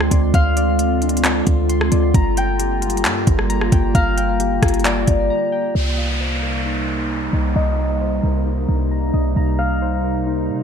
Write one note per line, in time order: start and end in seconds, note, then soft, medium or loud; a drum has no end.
0.00 5.71 D3 medium
0.00 2.11 G#3 medium
0.00 0.79 C4 medium
0.00 2.11 C4 medium
0.00 0.57 D4 medium
0.00 0.34 F4 medium
0.00 5.71 F4 medium
0.00 0.10 D5 medium
0.00 0.32 G5 medium
0.00 0.33 C6 loud
0.00 cross-stick loud
0.11 0.33 D2 loud
0.11 0.55 D5 medium
0.11 kick medium
0.11 closed hi-hat medium
0.34 1.43 D2 loud
0.34 2.01 F5 loud
0.34 1.68 C6 loud
0.34 kick loud
0.34 closed hi-hat medium
0.57 1.91 D5 medium
0.57 closed hi-hat medium
0.79 2.14 F4 medium
0.79 closed hi-hat medium
1.02 2.15 D4 medium
1.02 closed hi-hat medium
1.09 closed hi-hat medium
1.17 closed hi-hat medium
1.24 2.14 C4 medium
1.24 clap loud
1.24 closed hi-hat medium
1.47 1.90 D2 loud
1.47 kick loud
1.47 closed hi-hat medium
1.69 2.14 C6 loud
1.69 closed hi-hat medium
1.81 cross-stick loud
1.92 2.14 D2 loud
1.92 2.14 D5 medium
1.92 closed hi-hat medium
2.14 3.06 G1 loud
2.14 5.72 G3 medium
2.14 5.72 A#3 medium
2.14 3.48 A#5 loud
2.14 kick loud
2.14 closed hi-hat medium
2.37 3.71 G5 medium
2.37 3.93 G5 loud
2.37 closed hi-hat medium
2.60 3.95 G4 loud
2.60 closed hi-hat medium
2.81 4.17 F4 medium
2.81 closed hi-hat medium
2.90 closed hi-hat medium
2.97 closed hi-hat medium
3.05 3.26 G2 medium
3.05 4.40 A#3 medium
3.05 clap loud
3.05 closed hi-hat medium
3.27 3.71 G1 loud
3.27 kick loud
3.27 closed hi-hat medium
3.39 cross-stick medium
3.50 3.94 A#5 loud
3.50 closed hi-hat medium
3.61 cross-stick medium
3.72 3.94 G1 loud
3.72 4.16 G5 medium
3.72 kick loud
3.72 closed hi-hat medium
3.95 4.60 G1 loud
3.95 5.61 F5 loud
3.95 5.29 A#5 loud
3.95 kick loud
3.95 closed hi-hat medium
4.17 5.51 G5 medium
4.17 closed hi-hat medium
4.40 5.75 G4 medium
4.40 closed hi-hat medium
4.62 5.06 G1 loud
4.62 5.75 F4 medium
4.62 kick loud
4.62 cross-stick loud
4.62 closed hi-hat medium
4.68 closed hi-hat medium
4.74 closed hi-hat medium
4.79 closed hi-hat soft
4.85 5.75 A#3 medium
4.85 6.70 D5 medium
4.85 clap loud
4.85 closed hi-hat medium
5.07 5.30 G1 loud
5.07 kick medium
5.07 closed hi-hat medium
5.30 5.74 A#5 medium
5.52 5.75 G5 medium
5.75 7.29 C2 loud
5.75 10.63 C3 medium
5.75 10.63 G3 medium
5.75 10.63 A#3 medium
5.75 10.63 D#4 medium
5.75 downlifter medium
5.97 7.32 D#5 medium
5.97 7.64 F5 medium
6.20 7.56 C5 medium
6.43 7.78 A#4 medium
6.66 8.01 D#4 medium
7.11 7.55 A#5 loud
7.33 7.55 C2 medium
7.33 7.77 D#5 medium
7.56 8.21 C2 loud
7.56 9.34 D#5 loud
7.56 8.90 A#5 loud
7.78 9.13 D#5 medium
8.01 9.36 C5 medium
8.23 8.67 C2 loud
8.23 9.59 A#4 medium
8.46 9.81 D#4 medium
8.69 9.12 C2 loud
8.91 9.36 A#5 medium
9.14 9.35 C2 loud
9.14 9.58 D#5 medium
9.36 10.51 C2 loud
9.36 10.63 A#5 loud
9.59 10.63 D#5 medium
9.59 10.63 F5 medium
9.82 10.63 C5 medium
10.04 10.63 A#4 medium
10.27 10.63 D#4 medium
10.49 10.63 C3 loud